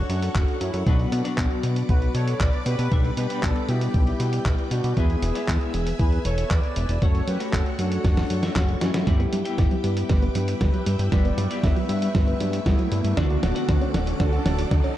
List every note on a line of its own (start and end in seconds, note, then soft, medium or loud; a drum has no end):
0.00 0.84 A3 medium
0.00 0.57 D4 medium
0.00 0.64 F#4 loud
0.00 0.84 F#4 medium
0.00 0.85 A4 medium
0.00 0.84 C#5 medium
0.00 0.85 C#5 medium
0.00 2.88 F#5 medium
0.00 0.85 C#6 medium
0.10 0.29 F#2 medium
0.10 closed hi-hat medium
0.23 closed hi-hat soft
0.35 0.45 F#1 medium
0.35 kick loud
0.35 clap loud
0.35 closed hi-hat soft
0.48 closed hi-hat soft
0.61 0.71 F#2 medium
0.61 0.85 C#4 medium
0.61 0.85 E4 medium
0.61 closed hi-hat medium
0.74 0.84 F#2 medium
0.74 closed hi-hat soft
0.86 1.06 B1 medium
0.86 1.22 B2 medium
0.86 1.22 F#3 medium
0.86 1.22 B3 medium
0.86 1.22 D4 medium
0.86 1.86 D4 medium
0.86 1.85 F#4 loud
0.86 6.98 B4 medium
0.86 1.22 B4 medium
0.86 4.93 D5 medium
0.86 4.93 D6 medium
0.86 kick loud
0.86 closed hi-hat soft
0.99 closed hi-hat soft
1.12 1.22 B2 medium
1.12 closed hi-hat medium
1.24 2.89 B2 medium
1.24 2.89 F#3 medium
1.24 2.89 B3 medium
1.24 2.89 D4 medium
1.24 2.89 D5 medium
1.24 closed hi-hat soft
1.38 1.48 B1 loud
1.38 kick loud
1.38 clap loud
1.38 closed hi-hat medium
1.51 closed hi-hat soft
1.63 1.83 B2 medium
1.63 closed hi-hat medium
1.76 closed hi-hat soft
1.89 2.09 B1 medium
1.89 2.13 F#4 medium
1.89 2.13 B4 loud
1.89 kick loud
1.89 closed hi-hat soft
2.02 closed hi-hat soft
2.15 2.34 B2 medium
2.15 2.39 A4 medium
2.15 2.39 C#5 loud
2.15 closed hi-hat medium
2.28 closed hi-hat medium
2.40 2.50 B1 medium
2.40 2.65 B4 medium
2.40 2.67 D5 loud
2.40 kick loud
2.40 clap loud
2.40 closed hi-hat soft
2.53 closed hi-hat soft
2.66 2.76 B2 medium
2.66 3.14 G4 medium
2.66 3.14 B4 loud
2.66 closed hi-hat medium
2.79 2.89 B2 medium
2.79 closed hi-hat soft
2.91 3.11 B1 medium
2.91 3.27 B2 medium
2.91 3.27 G3 medium
2.91 3.27 B3 medium
2.91 3.27 D4 medium
2.91 3.27 E5 medium
2.91 4.95 G5 medium
2.91 kick loud
2.91 closed hi-hat medium
3.04 closed hi-hat soft
3.17 3.27 B2 medium
3.17 3.42 G4 medium
3.17 3.44 B4 loud
3.17 closed hi-hat medium
3.30 4.94 B2 medium
3.30 4.94 G3 medium
3.30 4.94 B3 medium
3.30 4.94 D4 medium
3.30 4.94 B4 medium
3.30 closed hi-hat soft
3.43 3.53 B1 loud
3.43 3.67 D4 medium
3.43 3.67 A4 loud
3.43 kick loud
3.43 clap loud
3.43 closed hi-hat medium
3.56 closed hi-hat soft
3.68 3.88 B2 medium
3.68 4.68 E4 medium
3.68 4.67 G4 loud
3.68 closed hi-hat medium
3.81 closed hi-hat soft
3.94 4.14 B1 medium
3.94 kick loud
3.94 closed hi-hat medium
4.07 closed hi-hat soft
4.20 4.40 B2 medium
4.20 closed hi-hat medium
4.33 closed hi-hat medium
4.46 4.55 B1 medium
4.46 kick loud
4.46 clap loud
4.46 closed hi-hat soft
4.58 closed hi-hat soft
4.71 4.81 B2 medium
4.71 4.96 D4 medium
4.71 4.98 F#4 medium
4.71 closed hi-hat medium
4.84 4.94 B2 medium
4.84 closed hi-hat medium
4.96 5.17 E2 loud
4.96 5.32 G#3 medium
4.96 5.32 B3 medium
4.96 5.32 E4 medium
4.96 5.96 E4 medium
4.96 5.99 G#4 loud
4.96 5.32 B4 medium
4.96 7.00 E5 medium
4.96 7.00 G#5 medium
4.96 7.00 E6 medium
4.96 kick loud
4.96 closed hi-hat medium
5.10 closed hi-hat soft
5.22 5.32 E1 medium
5.22 closed hi-hat medium
5.35 6.99 G#3 medium
5.35 6.99 B3 medium
5.35 6.99 E4 medium
5.35 6.99 D5 medium
5.35 closed hi-hat medium
5.48 5.58 E2 loud
5.48 kick medium
5.48 clap loud
5.48 closed hi-hat medium
5.61 closed hi-hat soft
5.74 5.93 E1 medium
5.74 closed hi-hat medium
5.87 closed hi-hat medium
5.99 6.19 E2 medium
5.99 6.24 G#4 medium
5.99 6.23 B4 medium
5.99 kick loud
5.99 closed hi-hat medium
6.12 closed hi-hat soft
6.25 6.45 E1 medium
6.25 6.49 A4 medium
6.25 6.49 C#5 loud
6.25 closed hi-hat medium
6.38 closed hi-hat medium
6.51 6.61 E2 medium
6.51 6.99 B4 medium
6.51 7.03 D5 loud
6.51 kick loud
6.51 clap loud
6.51 closed hi-hat medium
6.63 closed hi-hat soft
6.76 6.86 E1 medium
6.76 closed hi-hat medium
6.89 6.99 E1 medium
6.89 closed hi-hat medium
7.01 7.22 F#1 loud
7.01 7.37 A3 medium
7.01 7.37 C#4 medium
7.01 7.37 F#4 medium
7.01 9.05 A4 medium
7.01 7.26 A4 medium
7.01 9.05 C#5 medium
7.01 7.28 C#5 loud
7.01 9.05 F#5 medium
7.01 7.37 F#5 medium
7.01 9.05 C#6 medium
7.01 kick loud
7.01 closed hi-hat medium
7.15 closed hi-hat soft
7.28 7.37 F#2 medium
7.28 7.52 G4 medium
7.28 7.54 B4 medium
7.28 closed hi-hat loud
7.40 8.40 A3 medium
7.40 8.40 F#4 medium
7.40 8.40 C#5 loud
7.40 closed hi-hat medium
7.53 7.63 F#1 loud
7.53 7.65 F#4 medium
7.53 7.65 A4 medium
7.53 kick loud
7.53 clap loud
7.53 closed hi-hat medium
7.66 closed hi-hat soft
7.79 7.99 F#2 medium
7.79 8.78 D4 medium
7.79 8.55 F#4 loud
7.79 closed hi-hat medium
7.92 closed hi-hat medium
8.05 8.24 F#1 medium
8.05 kick loud
8.05 snare medium
8.05 closed hi-hat medium
8.17 snare medium
8.17 closed hi-hat soft
8.30 8.50 F#2 medium
8.30 closed hi-hat medium
8.43 9.04 A3 medium
8.43 9.04 F#4 medium
8.43 9.04 C#5 medium
8.43 9.04 E5 medium
8.43 snare medium
8.43 closed hi-hat medium
8.56 8.76 F#1 medium
8.56 8.81 C#4 medium
8.56 9.09 F#4 medium
8.56 kick loud
8.56 snare medium
8.56 clap loud
8.56 closed hi-hat medium
8.69 closed hi-hat soft
8.81 8.91 F#2 medium
8.81 9.06 C#4 medium
8.81 9.05 E4 medium
8.81 snare loud
8.81 closed hi-hat medium
8.94 9.04 F#2 loud
8.94 snare medium
8.94 closed hi-hat medium
9.07 9.27 G1 medium
9.07 9.42 G2 medium
9.07 9.14 G3 loud
9.07 9.42 B3 medium
9.07 9.42 E4 medium
9.07 10.06 E4 medium
9.07 10.09 G4 loud
9.07 9.42 G4 medium
9.07 13.13 B4 medium
9.07 9.42 D5 medium
9.07 13.13 E5 medium
9.07 13.13 G5 medium
9.07 11.10 D6 medium
9.07 kick loud
9.07 snare soft
9.07 closed hi-hat medium
9.07 riser medium
9.20 9.27 B3 loud
9.20 closed hi-hat soft
9.33 9.43 G2 medium
9.33 9.40 F#3 medium
9.33 closed hi-hat medium
9.45 11.09 G2 medium
9.45 11.09 B3 medium
9.45 11.09 E4 medium
9.45 11.09 G4 medium
9.45 11.09 G5 medium
9.45 closed hi-hat medium
9.58 9.68 G1 loud
9.58 9.63 G3 medium
9.58 kick loud
9.58 snare medium
9.58 closed hi-hat medium
9.71 9.78 F#3 loud
9.71 closed hi-hat soft
9.84 10.04 G2 medium
9.84 9.95 G3 medium
9.84 closed hi-hat medium
9.97 closed hi-hat medium
10.09 10.29 G1 medium
10.09 10.17 G3 loud
10.09 10.58 G4 medium
10.09 10.60 B4 medium
10.09 kick loud
10.09 snare medium
10.09 closed hi-hat medium
10.22 10.30 B3 loud
10.22 closed hi-hat soft
10.35 10.55 G2 medium
10.35 10.43 F#3 medium
10.35 closed hi-hat medium
10.48 closed hi-hat medium
10.61 10.71 G1 medium
10.61 10.65 G3 medium
10.61 11.09 G4 medium
10.61 11.12 B4 medium
10.61 kick loud
10.61 snare medium
10.61 closed hi-hat medium
10.74 10.81 F#3 loud
10.74 closed hi-hat soft
10.86 10.96 G2 medium
10.86 10.97 G3 medium
10.86 closed hi-hat medium
10.99 11.09 G2 medium
10.99 closed hi-hat medium
11.12 11.32 G1 medium
11.12 11.48 G2 medium
11.12 11.19 G3 loud
11.12 11.48 B3 medium
11.12 11.48 E4 medium
11.12 11.48 G4 medium
11.12 11.60 B4 medium
11.12 11.65 D5 loud
11.12 11.48 G5 medium
11.12 13.15 C#6 medium
11.12 kick loud
11.12 snare medium
11.12 closed hi-hat medium
11.25 11.32 B3 loud
11.25 closed hi-hat soft
11.38 11.48 G2 medium
11.38 11.45 F#3 medium
11.38 closed hi-hat medium
11.50 13.14 G2 medium
11.50 13.14 B3 medium
11.50 13.14 E4 medium
11.50 13.14 G4 medium
11.50 13.14 D5 medium
11.50 closed hi-hat soft
11.63 11.73 G1 loud
11.63 11.68 G3 medium
11.63 12.62 B4 medium
11.63 12.62 E5 loud
11.63 kick loud
11.63 snare medium
11.63 closed hi-hat medium
11.76 11.84 F#3 loud
11.76 closed hi-hat soft
11.89 12.09 G2 medium
11.89 12.00 G3 medium
11.89 closed hi-hat medium
12.02 closed hi-hat medium
12.15 12.34 G1 medium
12.15 12.22 G3 loud
12.15 kick loud
12.15 snare medium
12.15 closed hi-hat medium
12.28 12.35 B3 loud
12.28 closed hi-hat soft
12.40 12.60 G2 medium
12.40 12.48 F#3 medium
12.40 closed hi-hat medium
12.53 closed hi-hat medium
12.66 12.76 G1 medium
12.66 12.70 G3 medium
12.66 13.14 B3 medium
12.66 13.19 E4 loud
12.66 kick loud
12.66 snare medium
12.66 closed hi-hat medium
12.79 12.86 F#3 loud
12.79 closed hi-hat soft
12.92 13.02 G2 medium
12.92 13.03 G3 medium
12.92 closed hi-hat medium
13.04 13.14 G2 medium
13.04 closed hi-hat medium
13.17 13.37 D2 loud
13.17 13.53 D3 medium
13.17 13.53 A3 medium
13.17 13.25 D4 loud
13.17 13.53 D4 medium
13.17 14.16 D4 medium
13.17 14.20 F#4 loud
13.17 13.53 F#4 medium
13.17 14.97 A4 medium
13.17 14.97 D5 medium
13.17 13.53 D5 medium
13.17 14.97 F#5 medium
13.17 14.97 D6 medium
13.17 kick loud
13.17 snare medium
13.17 closed hi-hat soft
13.30 13.37 F#4 loud
13.30 closed hi-hat soft
13.43 13.53 D1 medium
13.43 13.50 C#4 medium
13.43 snare medium
13.43 closed hi-hat medium
13.55 14.97 D3 medium
13.55 14.97 A3 medium
13.55 14.97 D4 medium
13.55 14.97 F#4 medium
13.55 14.97 F#5 medium
13.55 closed hi-hat soft
13.68 13.78 D2 loud
13.68 13.73 D4 medium
13.68 kick loud
13.68 snare medium
13.68 closed hi-hat medium
13.81 13.89 C#4 loud
13.81 closed hi-hat soft
13.94 14.14 D1 medium
13.94 14.05 D4 medium
13.94 snare medium
13.94 closed hi-hat medium
14.07 closed hi-hat medium
14.20 14.40 D2 medium
14.20 14.27 D4 loud
14.20 14.93 F#4 medium
14.20 14.93 A4 loud
14.20 kick loud
14.20 snare medium
14.20 closed hi-hat medium
14.33 14.40 F#4 loud
14.33 closed hi-hat soft
14.46 14.65 D1 medium
14.46 14.53 C#4 medium
14.46 snare medium
14.46 closed hi-hat medium
14.59 closed hi-hat medium
14.71 14.81 D2 medium
14.71 14.76 D4 medium
14.71 kick loud
14.71 snare medium
14.71 closed hi-hat medium
14.84 14.91 C#4 loud
14.84 closed hi-hat soft